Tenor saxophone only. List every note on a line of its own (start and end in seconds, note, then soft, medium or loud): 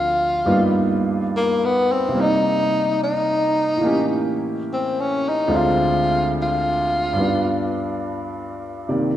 0.00 1.01 F4 medium
1.37 1.67 A#3 medium
1.65 1.94 B3 medium
1.92 2.22 C4 medium
2.21 3.01 D#4 medium
3.03 4.37 D#4 medium
4.73 5.02 C4 medium
5.01 5.31 C#4 medium
5.29 5.58 D#4 medium
5.56 6.36 F4 medium
6.42 7.76 F4 medium